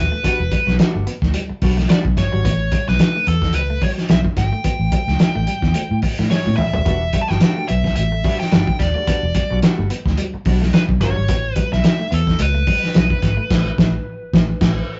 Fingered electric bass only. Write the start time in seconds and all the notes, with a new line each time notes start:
0.40 E1
0.67 B1
0.80 muted fingered electric bass stroke
0.95 G1
1.22 D2
1.50 muted fingered electric bass stroke
1.62 B1
2.05 B1
2.17 G1
2.34 G#1
2.45 A1
2.88 B1
3.27 E2
3.55 C#2
4.10 B1
4.37 G#1
4.80 A1
5.08 C#2
5.36 A1
5.63 E2
5.91 A2
6.19 A2
6.46 A2
6.74 D#1
6.86 E1
7.30 G1
7.70 B1
7.98 A1
8.53 G1
8.80 D#1
9.23 E1
9.51 B1
9.63 muted fingered electric bass stroke
9.79 G1
10.06 D2
10.34 muted fingered electric bass stroke
10.46 B1
10.89 B1
11.01 G1
11.17 G#1
11.29 A1
11.72 B1
12.12 E2
12.40 C#2
12.95 B1
13.23 G#1
13.51 A1
13.78 A1
14.33 A1
14.61 A1